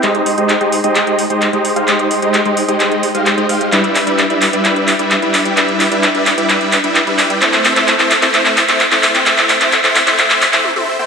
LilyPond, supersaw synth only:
\new Staff \with { instrumentName = "Supersaw synth" } { \time 4/4 \key e \phrygian \tempo 4 = 130 <aes ees' g' c'' ees''>8. <aes ees' g' c'' ees''>16 r16 <aes ees' g' c'' ees''>16 r16 <aes ees' g' c'' ees''>16 <aes ees' g' c'' ees''>16 <aes ees' g' c'' ees''>16 r16 <aes ees' g' c'' ees''>16 r16 <aes ees' g' c'' ees''>8 <aes ees' g' c'' f''>16 | <aes ees' g' c'' ees''>8. <aes ees' g' c'' ees''>16 r16 <aes ees' g' c'' ees''>16 r16 <aes ees' g' c'' ees''>16 <aes ees' g' c'' ees''>16 <aes ees' g' c'' ees''>16 r16 <aes ees' g' c'' f''>16 <aes ees' g' c'' g''>16 <aes ees' g' c'' ees''>16 <aes ees' g' c'' f''>8 | <g d' e' b' e''>8. <g d' e' b' e''>16 r16 <g d' e' b' e''>16 r16 <g d' e' b' e''>16 <g d' e' b' e''>16 <g d' e' b' e''>16 r16 <g d' e' b' e''>16 r16 <g d' e' b' e''>8 <g d' e' b' g''>16 | <g d' e' b' e''>8. <g d' e' b' e''>16 r16 <g d' e' b' e''>16 r16 <g d' e' b' e''>16 <g d' e' b' e''>16 <g d' e' b' e''>16 r16 <g d' e' b' e''>16 r16 <g d' e' b' e''>8 <g d' e' b' g''>16 |
<a c' e' c'' e''>8. <a c' e' c'' e''>16 r16 <a c' e' c'' e''>16 r16 <a c' e' c'' e''>16 <a c' e' c'' e''>16 <a c' e' c'' e''>16 r16 <a c' e' c'' e''>16 r16 <a c' e' c'' e''>8 <a c' e' c'' g''>16 | <a c' e' c'' e''>8. <a c' e' c'' e''>16 r16 <a c' e' c'' e''>16 r16 <a c' e' c'' e''>16 <a c' e' c'' e''>16 <a c' e' c'' e''>16 r16 <a c' e' c'' e''>16 r16 <a c' e' c'' e''>8 <a c' e' c'' g''>16 | }